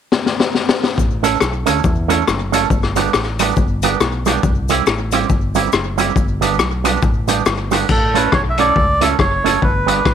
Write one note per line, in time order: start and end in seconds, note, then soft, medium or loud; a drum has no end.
0.12 snare medium
0.26 snare medium
0.40 snare medium
0.55 snare medium
0.69 snare loud
0.83 snare medium
0.98 1.35 A1 medium
0.98 kick loud
0.98 cabasa medium
1.23 1.36 A3 medium
1.23 1.36 C#4 medium
1.23 1.37 E4 medium
1.23 1.37 A4 medium
1.23 closed hi-hat medium
1.23 cabasa medium
1.40 1.63 B1 medium
1.40 cross-stick loud
1.40 cabasa medium
1.66 1.82 D2 medium
1.66 1.79 A3 medium
1.66 1.80 C#4 medium
1.66 1.80 E4 medium
1.66 1.80 A4 medium
1.66 closed hi-hat loud
1.66 cabasa medium
1.84 2.21 E2 loud
1.84 kick loud
1.84 cabasa soft
2.08 2.22 A3 medium
2.08 2.22 C#4 medium
2.08 2.23 E4 medium
2.08 2.23 A4 medium
2.08 closed hi-hat loud
2.08 cabasa medium
2.28 2.64 F#1 medium
2.28 cross-stick medium
2.28 cabasa medium
2.52 2.66 A3 medium
2.52 2.66 C#4 medium
2.52 2.66 E4 medium
2.52 2.66 A4 medium
2.52 closed hi-hat medium
2.52 cabasa medium
2.70 3.07 G1 medium
2.70 kick loud
2.70 cabasa medium
2.83 cross-stick medium
2.96 3.09 G3 medium
2.96 3.10 B3 medium
2.96 3.10 D4 medium
2.96 3.10 G4 medium
2.96 closed hi-hat medium
2.96 cabasa medium
3.13 3.51 A1 medium
3.13 cross-stick medium
3.13 cabasa medium
3.39 3.53 G3 medium
3.39 3.53 B3 medium
3.39 3.53 D4 medium
3.39 3.53 G4 medium
3.39 closed hi-hat medium
3.39 cabasa medium
3.56 3.94 G1 medium
3.56 kick loud
3.56 cabasa soft
3.82 3.96 G3 medium
3.82 3.96 B3 medium
3.82 3.97 D4 medium
3.82 3.97 G4 medium
3.82 closed hi-hat loud
3.82 cabasa medium
4.00 4.37 B1 medium
4.00 cross-stick medium
4.00 cabasa medium
4.26 4.39 G3 medium
4.26 4.39 B3 medium
4.26 4.40 D4 medium
4.26 4.40 G4 medium
4.26 cross-stick medium
4.26 closed hi-hat medium
4.26 cabasa medium
4.43 4.80 C2 loud
4.43 kick loud
4.43 cabasa medium
4.69 4.82 G3 medium
4.69 4.83 C4 medium
4.69 4.83 E4 medium
4.69 4.83 G4 medium
4.69 closed hi-hat medium
4.69 cabasa medium
4.86 5.23 A1 medium
4.86 cross-stick loud
4.86 cabasa medium
5.12 5.26 G3 medium
5.12 5.26 C4 medium
5.12 5.26 E4 medium
5.12 5.26 G4 medium
5.12 closed hi-hat medium
5.12 cabasa medium
5.29 5.67 G1 medium
5.29 kick loud
5.29 cabasa soft
5.55 5.68 G3 medium
5.55 5.69 C4 medium
5.55 5.69 E4 medium
5.55 5.69 G4 medium
5.55 closed hi-hat loud
5.55 cabasa medium
5.72 6.10 F#1 medium
5.72 cross-stick loud
5.72 cabasa medium
5.98 6.11 G3 medium
5.98 6.11 C4 medium
5.98 6.12 E4 medium
5.98 6.12 G4 medium
5.98 closed hi-hat medium
5.98 cabasa medium
6.16 6.60 G1 loud
6.16 kick loud
6.16 cabasa medium
6.41 6.55 G3 medium
6.41 6.55 B3 medium
6.41 6.55 D4 medium
6.41 6.55 G4 medium
6.41 closed hi-hat medium
6.41 cabasa medium
6.59 6.97 B1 loud
6.59 cross-stick loud
6.59 cabasa medium
6.84 6.98 G3 medium
6.84 6.98 B3 medium
6.84 6.98 D4 medium
6.84 6.98 G4 medium
6.84 closed hi-hat medium
6.84 cabasa medium
7.02 7.40 A1 medium
7.02 kick loud
7.02 cabasa soft
7.28 7.41 G3 medium
7.28 7.42 B3 medium
7.28 7.42 D4 medium
7.28 7.42 G4 medium
7.28 closed hi-hat loud
7.28 cabasa medium
7.46 7.83 G1 medium
7.46 cross-stick loud
7.46 cabasa medium
7.71 7.85 G3 medium
7.71 7.85 B3 medium
7.71 7.85 D4 medium
7.71 7.85 G4 medium
7.71 cross-stick medium
7.71 closed hi-hat medium
7.71 cabasa medium
7.89 8.26 A1 medium
7.89 8.16 A4 medium
7.89 kick loud
7.89 crash medium
8.14 8.28 A3 medium
8.14 8.28 C#4 medium
8.14 8.28 E4 medium
8.14 8.28 A4 medium
8.14 8.34 B4 medium
8.14 closed hi-hat medium
8.32 8.69 B1 medium
8.32 8.41 C#5 loud
8.32 kick loud
8.32 cross-stick loud
8.50 8.58 E5 medium
8.57 8.72 A3 medium
8.57 8.72 C#4 medium
8.57 8.72 E4 medium
8.57 8.72 A4 medium
8.57 9.03 D5 loud
8.57 closed hi-hat medium
8.76 9.13 C#2 medium
8.76 kick loud
9.01 9.14 A3 medium
9.01 9.15 C#4 medium
9.01 9.15 E4 medium
9.01 9.15 A4 medium
9.01 9.09 E5 medium
9.01 closed hi-hat loud
9.19 9.56 F#1 medium
9.19 9.64 C#5 medium
9.19 kick loud
9.19 cross-stick medium
9.44 9.58 A3 medium
9.44 9.58 C#4 medium
9.44 9.58 E4 medium
9.44 9.58 A4 medium
9.44 closed hi-hat medium
9.62 9.99 G1 medium
9.62 10.14 B4 medium
9.62 kick loud
9.86 10.00 G3 medium
9.86 10.01 B3 medium
9.86 10.01 D4 medium
9.86 10.01 G4 medium
9.86 closed hi-hat medium
10.05 10.14 A1 medium
10.05 muted clean electric guitar stroke soft
10.05 kick loud
10.05 cross-stick loud